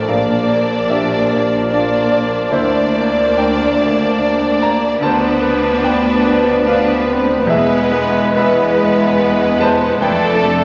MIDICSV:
0, 0, Header, 1, 11, 480
1, 0, Start_track
1, 0, Tempo, 811908
1, 50, Time_signature, 3, 2, 24, 8
1, 1491, Tempo, 843882
1, 2451, Tempo, 817439
1, 4371, Tempo, 878477
1, 4851, Tempo, 832178
1, 6168, End_track
2, 0, Start_track
2, 0, Title_t, "Flute section"
2, 0, Program_c, 0, 73
2, 58, Note_on_c, 0, 74, 39
2, 2774, Note_off_c, 0, 74, 0
2, 2940, Note_on_c, 0, 74, 52
2, 4351, Note_off_c, 0, 74, 0
2, 4370, Note_on_c, 0, 76, 56
2, 5630, Note_off_c, 0, 76, 0
2, 5807, Note_on_c, 0, 74, 56
2, 6168, Note_off_c, 0, 74, 0
2, 6168, End_track
3, 0, Start_track
3, 0, Title_t, "Grand piano"
3, 0, Program_c, 1, 0
3, 0, Control_c, 1, 64, 127
3, 0, Note_on_c, 1, 57, 31
3, 0, Note_on_c, 1, 62, 34
3, 0, Note_on_c, 1, 70, 45
3, 0, Note_on_c, 1, 74, 32
3, 0, Note_on_c, 1, 79, 58
3, 0, Note_on_c, 1, 81, 51
3, 46, Note_on_c, 1, 34, 48
3, 50, Note_on_c, 1, 77, 53
3, 53, Note_off_c, 1, 70, 0
3, 53, Note_on_c, 1, 70, 40
3, 59, Control_c, 1, 64, 0
3, 61, Note_off_c, 1, 57, 0
3, 63, Note_off_c, 1, 62, 0
3, 63, Note_off_c, 1, 74, 0
3, 64, Note_off_c, 1, 79, 0
3, 64, Note_off_c, 1, 81, 0
3, 143, Control_c, 1, 64, 127
3, 284, Note_on_c, 1, 58, 35
3, 286, Note_on_c, 1, 74, 38
3, 502, Note_off_c, 1, 58, 0
3, 503, Note_off_c, 1, 74, 0
3, 504, Note_off_c, 1, 77, 0
3, 506, Note_off_c, 1, 70, 0
3, 529, Note_on_c, 1, 62, 35
3, 530, Note_on_c, 1, 76, 49
3, 534, Note_on_c, 1, 74, 38
3, 536, Note_on_c, 1, 67, 43
3, 745, Note_off_c, 1, 62, 0
3, 747, Note_off_c, 1, 74, 0
3, 765, Note_on_c, 1, 74, 38
3, 766, Note_on_c, 1, 58, 37
3, 984, Note_off_c, 1, 58, 0
3, 984, Note_off_c, 1, 74, 0
3, 986, Note_off_c, 1, 76, 0
3, 989, Note_off_c, 1, 67, 0
3, 1006, Note_on_c, 1, 62, 37
3, 1011, Note_on_c, 1, 74, 37
3, 1019, Note_on_c, 1, 65, 39
3, 1224, Note_off_c, 1, 62, 0
3, 1227, Note_off_c, 1, 74, 0
3, 1244, Note_on_c, 1, 58, 34
3, 1252, Note_on_c, 1, 74, 36
3, 1465, Note_off_c, 1, 34, 0
3, 1465, Note_off_c, 1, 58, 0
3, 1469, Note_off_c, 1, 74, 0
3, 1473, Note_off_c, 1, 65, 0
3, 1482, Note_on_c, 1, 38, 52
3, 1489, Note_on_c, 1, 72, 61
3, 1490, Note_on_c, 1, 64, 47
3, 1501, Control_c, 1, 64, 0
3, 1604, Control_c, 1, 64, 127
3, 1729, Note_on_c, 1, 74, 42
3, 1732, Note_on_c, 1, 58, 37
3, 1953, Note_off_c, 1, 74, 0
3, 1954, Note_off_c, 1, 58, 0
3, 1954, Note_off_c, 1, 64, 0
3, 1954, Note_off_c, 1, 72, 0
3, 1974, Note_on_c, 1, 62, 41
3, 1978, Note_on_c, 1, 79, 56
3, 1979, Note_on_c, 1, 74, 47
3, 1984, Note_on_c, 1, 70, 42
3, 2191, Note_off_c, 1, 62, 0
3, 2194, Note_off_c, 1, 74, 0
3, 2206, Note_on_c, 1, 58, 38
3, 2211, Note_on_c, 1, 74, 41
3, 2423, Note_off_c, 1, 58, 0
3, 2425, Note_off_c, 1, 74, 0
3, 2428, Note_off_c, 1, 79, 0
3, 2431, Note_off_c, 1, 70, 0
3, 2433, Note_on_c, 1, 62, 42
3, 2435, Note_on_c, 1, 74, 42
3, 2659, Note_off_c, 1, 62, 0
3, 2660, Note_off_c, 1, 74, 0
3, 2690, Note_on_c, 1, 58, 39
3, 2692, Note_on_c, 1, 74, 40
3, 2694, Note_on_c, 1, 82, 76
3, 2903, Note_off_c, 1, 38, 0
3, 2907, Note_off_c, 1, 58, 0
3, 2908, Note_off_c, 1, 74, 0
3, 2916, Note_off_c, 1, 82, 0
3, 2918, Note_on_c, 1, 38, 61
3, 2930, Note_on_c, 1, 81, 75
3, 2939, Note_on_c, 1, 72, 59
3, 2941, Control_c, 1, 64, 0
3, 3043, Control_c, 1, 64, 127
3, 3160, Note_on_c, 1, 71, 52
3, 3161, Note_on_c, 1, 59, 46
3, 3382, Note_off_c, 1, 59, 0
3, 3382, Note_off_c, 1, 71, 0
3, 3386, Note_off_c, 1, 81, 0
3, 3391, Note_off_c, 1, 72, 0
3, 3401, Note_on_c, 1, 62, 45
3, 3401, Note_on_c, 1, 71, 47
3, 3409, Note_on_c, 1, 79, 66
3, 3622, Note_off_c, 1, 71, 0
3, 3623, Note_off_c, 1, 62, 0
3, 3648, Note_on_c, 1, 71, 45
3, 3650, Note_on_c, 1, 59, 50
3, 3865, Note_off_c, 1, 59, 0
3, 3865, Note_off_c, 1, 71, 0
3, 3865, Note_off_c, 1, 79, 0
3, 3889, Note_on_c, 1, 62, 48
3, 3895, Note_on_c, 1, 71, 49
3, 3896, Note_on_c, 1, 77, 70
3, 4104, Note_off_c, 1, 62, 0
3, 4107, Note_off_c, 1, 71, 0
3, 4121, Note_on_c, 1, 71, 44
3, 4126, Note_on_c, 1, 59, 46
3, 4340, Note_off_c, 1, 38, 0
3, 4343, Note_off_c, 1, 71, 0
3, 4346, Note_off_c, 1, 59, 0
3, 4350, Note_off_c, 1, 77, 0
3, 4364, Note_on_c, 1, 40, 71
3, 4380, Control_c, 1, 64, 0
3, 4382, Note_on_c, 1, 76, 75
3, 4385, Note_on_c, 1, 68, 54
3, 4467, Control_c, 1, 64, 127
3, 4608, Note_on_c, 1, 56, 53
3, 4610, Note_on_c, 1, 71, 54
3, 4828, Note_off_c, 1, 56, 0
3, 4829, Note_off_c, 1, 71, 0
3, 4834, Note_off_c, 1, 76, 0
3, 4835, Note_off_c, 1, 68, 0
3, 4843, Note_on_c, 1, 59, 48
3, 4846, Note_on_c, 1, 71, 52
3, 4860, Note_on_c, 1, 83, 68
3, 4864, Note_on_c, 1, 76, 55
3, 5067, Note_off_c, 1, 59, 0
3, 5068, Note_off_c, 1, 71, 0
3, 5087, Note_on_c, 1, 56, 46
3, 5088, Note_on_c, 1, 71, 54
3, 5304, Note_off_c, 1, 56, 0
3, 5304, Note_off_c, 1, 71, 0
3, 5312, Note_off_c, 1, 83, 0
3, 5314, Note_off_c, 1, 76, 0
3, 5325, Note_on_c, 1, 71, 57
3, 5327, Note_on_c, 1, 59, 45
3, 5542, Note_off_c, 1, 71, 0
3, 5543, Note_off_c, 1, 59, 0
3, 5561, Note_on_c, 1, 56, 46
3, 5568, Note_on_c, 1, 71, 53
3, 5570, Note_on_c, 1, 81, 85
3, 5581, Note_on_c, 1, 72, 64
3, 5781, Note_off_c, 1, 40, 0
3, 5781, Note_off_c, 1, 56, 0
3, 5784, Note_off_c, 1, 71, 0
3, 5792, Note_off_c, 1, 81, 0
3, 5797, Note_off_c, 1, 72, 0
3, 5801, Note_on_c, 1, 41, 66
3, 5810, Note_on_c, 1, 79, 72
3, 5816, Note_on_c, 1, 71, 52
3, 5818, Control_c, 1, 64, 0
3, 5905, Control_c, 1, 64, 127
3, 6046, Note_on_c, 1, 69, 51
3, 6048, Note_on_c, 1, 57, 50
3, 6168, Note_off_c, 1, 41, 0
3, 6168, Note_off_c, 1, 57, 0
3, 6168, Note_off_c, 1, 69, 0
3, 6168, Note_off_c, 1, 71, 0
3, 6168, Note_off_c, 1, 79, 0
3, 6168, End_track
4, 0, Start_track
4, 0, Title_t, "Violin section"
4, 0, Program_c, 2, 48
4, 43, Note_on_c, 2, 74, 47
4, 986, Note_off_c, 2, 74, 0
4, 1007, Note_on_c, 2, 74, 41
4, 1479, Note_off_c, 2, 74, 0
4, 1486, Note_on_c, 2, 74, 51
4, 2906, Note_off_c, 2, 74, 0
4, 2922, Note_on_c, 2, 71, 59
4, 3865, Note_off_c, 2, 71, 0
4, 3884, Note_on_c, 2, 71, 50
4, 4358, Note_off_c, 2, 71, 0
4, 4366, Note_on_c, 2, 71, 62
4, 4838, Note_off_c, 2, 71, 0
4, 4846, Note_on_c, 2, 71, 61
4, 5786, Note_off_c, 2, 71, 0
4, 5803, Note_on_c, 2, 69, 64
4, 6168, Note_off_c, 2, 69, 0
4, 6168, End_track
5, 0, Start_track
5, 0, Title_t, "Clarinet"
5, 0, Program_c, 3, 71
5, 56, Note_on_c, 3, 70, 43
5, 2754, Note_off_c, 3, 70, 0
5, 2930, Note_on_c, 3, 71, 55
5, 5805, Note_on_c, 3, 69, 67
5, 5814, Note_off_c, 3, 71, 0
5, 6168, Note_off_c, 3, 69, 0
5, 6168, End_track
6, 0, Start_track
6, 0, Title_t, "Violin section"
6, 0, Program_c, 4, 48
6, 46, Note_on_c, 4, 62, 45
6, 987, Note_off_c, 4, 62, 0
6, 1005, Note_on_c, 4, 62, 45
6, 1480, Note_off_c, 4, 62, 0
6, 1495, Note_on_c, 4, 62, 48
6, 2910, Note_off_c, 4, 62, 0
6, 2933, Note_on_c, 4, 62, 60
6, 3871, Note_off_c, 4, 62, 0
6, 3891, Note_on_c, 4, 62, 53
6, 4124, Note_off_c, 4, 62, 0
6, 4135, Note_on_c, 4, 60, 56
6, 4364, Note_on_c, 4, 59, 61
6, 4369, Note_off_c, 4, 60, 0
6, 4842, Note_off_c, 4, 59, 0
6, 4848, Note_on_c, 4, 59, 65
6, 5787, Note_off_c, 4, 59, 0
6, 5802, Note_on_c, 4, 62, 60
6, 6168, Note_off_c, 4, 62, 0
6, 6168, End_track
7, 0, Start_track
7, 0, Title_t, "French horn section"
7, 0, Program_c, 5, 60
7, 49, Note_on_c, 5, 58, 52
7, 51, Note_on_c, 5, 62, 48
7, 2824, Note_off_c, 5, 58, 0
7, 2824, Note_off_c, 5, 62, 0
7, 2924, Note_on_c, 5, 62, 59
7, 2928, Note_on_c, 5, 59, 65
7, 4343, Note_off_c, 5, 62, 0
7, 4345, Note_off_c, 5, 59, 0
7, 4373, Note_on_c, 5, 56, 63
7, 4373, Note_on_c, 5, 64, 65
7, 5785, Note_off_c, 5, 64, 0
7, 5786, Note_off_c, 5, 56, 0
7, 5806, Note_on_c, 5, 57, 69
7, 5810, Note_on_c, 5, 62, 69
7, 6168, Note_off_c, 5, 57, 0
7, 6168, Note_off_c, 5, 62, 0
7, 6168, End_track
8, 0, Start_track
8, 0, Title_t, "Viola section"
8, 0, Program_c, 6, 48
8, 53, Note_on_c, 6, 58, 43
8, 991, Note_off_c, 6, 58, 0
8, 1010, Note_on_c, 6, 58, 42
8, 1482, Note_off_c, 6, 58, 0
8, 1491, Note_on_c, 6, 58, 50
8, 2908, Note_off_c, 6, 58, 0
8, 2931, Note_on_c, 6, 59, 58
8, 3870, Note_off_c, 6, 59, 0
8, 3889, Note_on_c, 6, 59, 53
8, 4360, Note_off_c, 6, 59, 0
8, 4364, Note_on_c, 6, 56, 60
8, 4837, Note_off_c, 6, 56, 0
8, 4848, Note_on_c, 6, 56, 65
8, 5787, Note_off_c, 6, 56, 0
8, 5807, Note_on_c, 6, 57, 59
8, 6168, Note_off_c, 6, 57, 0
8, 6168, End_track
9, 0, Start_track
9, 0, Title_t, "Bassoon"
9, 0, Program_c, 7, 70
9, 50, Note_on_c, 7, 53, 45
9, 2752, Note_off_c, 7, 53, 0
9, 2927, Note_on_c, 7, 53, 52
9, 4366, Note_on_c, 7, 56, 63
9, 4374, Note_off_c, 7, 53, 0
9, 5805, Note_off_c, 7, 56, 0
9, 5807, Note_on_c, 7, 57, 65
9, 6168, Note_off_c, 7, 57, 0
9, 6168, End_track
10, 0, Start_track
10, 0, Title_t, "Cello section"
10, 0, Program_c, 8, 48
10, 53, Note_on_c, 8, 46, 42
10, 1490, Note_on_c, 8, 38, 46
10, 1493, Note_off_c, 8, 46, 0
10, 2925, Note_off_c, 8, 38, 0
10, 2932, Note_on_c, 8, 38, 55
10, 4347, Note_off_c, 8, 38, 0
10, 4372, Note_on_c, 8, 40, 60
10, 5785, Note_off_c, 8, 40, 0
10, 5808, Note_on_c, 8, 41, 57
10, 6168, Note_off_c, 8, 41, 0
10, 6168, End_track
11, 0, Start_track
11, 0, Title_t, "Double bass section"
11, 0, Program_c, 10, 48
11, 50, Note_on_c, 10, 34, 43
11, 1489, Note_on_c, 10, 38, 47
11, 1491, Note_off_c, 10, 34, 0
11, 2925, Note_off_c, 10, 38, 0
11, 2932, Note_on_c, 10, 38, 58
11, 4347, Note_off_c, 10, 38, 0
11, 4368, Note_on_c, 10, 28, 58
11, 5783, Note_off_c, 10, 28, 0
11, 5805, Note_on_c, 10, 29, 65
11, 6168, Note_off_c, 10, 29, 0
11, 6168, End_track
0, 0, End_of_file